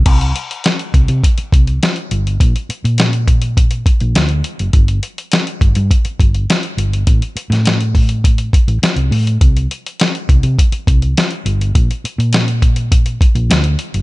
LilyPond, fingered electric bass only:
\new Staff \with { instrumentName = "Fingered electric bass" } { \clef bass \time 4/4 \key d \dorian \tempo 4 = 103 c,8 r4 c,16 c16 r8 c,8 r8 g,,8 | bes,,16 r8 bes,4.~ bes,16 r16 bes,,16 d,8 r16 fis,,16 | g,,8 r4 g,,16 g,16 r8 g,,8 r8 g,,8 | a,,16 r8 a,4.~ a,16 r16 a,,16 r16 c,16 a,8 |
c,8 r4 c,16 c16 r8 c,8 r8 g,,8 | bes,,16 r8 bes,4.~ bes,16 r16 bes,,16 d,8 r16 fis,,16 | }